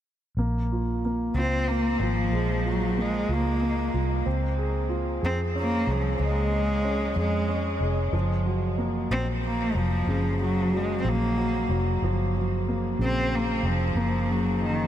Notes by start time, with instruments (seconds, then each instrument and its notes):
0.37 fingered electric bass A#1, grand piano A#3
0.72 grand piano F4
1.05 grand piano A#3
1.34 fingered electric bass C#2, cello C4, grand piano F4
1.68 cello A#3, grand piano A#3
1.99 fingered electric bass G#1, cello F3, grand piano F4
2.32 fingered electric bass A#1, grand piano G#3
2.65 cello F#3, grand piano F4
2.98 cello G#3, grand piano A#3
3.29 fingered electric bass C#2, grand piano F4
3.33 cello A#3
3.62 grand piano A#3
3.94 fingered electric bass C2, grand piano F4
4.26 fingered electric bass C#2, grand piano C4
4.57 grand piano G#4
4.89 grand piano F4
5.22 fingered electric bass F2, cello C4, grand piano G#4
5.56 cello A#3, grand piano C#4
5.87 fingered electric bass C2, grand piano G#4
5.92 cello F3
6.20 fingered electric bass C#2, grand piano G#3, cello G#3
6.53 grand piano G#4
6.85 grand piano C#4
7.16 fingered electric bass F2, cello G#3, grand piano G#4
7.49 grand piano C#4
7.80 fingered electric bass F1, grand piano G#4
8.13 fingered electric bass F#1, grand piano F3
8.46 grand piano F#3
8.78 grand piano A#3
9.11 fingered electric bass A#1, cello C4
9.45 cello A#3
9.75 fingered electric bass F1, cello F3
10.07 fingered electric bass F#1, grand piano C#3
10.41 grand piano F#3, cello F#3
10.73 grand piano F#3, cello G#3
11.01 fingered electric bass A#1, cello C4
11.05 grand piano F#3, cello A#3
11.38 grand piano F#3
11.69 fingered electric bass F1, grand piano F#3
12.02 fingered electric bass F#1, grand piano F3
12.37 grand piano F#3
12.68 grand piano A#3
12.99 fingered electric bass A#1, grand piano C#3, cello C4
13.35 cello A#3
13.63 fingered electric bass F1
13.67 cello F3
13.95 fingered electric bass F#1, grand piano A#3
14.30 grand piano C#3, cello F#3
14.62 cello D#3, grand piano F3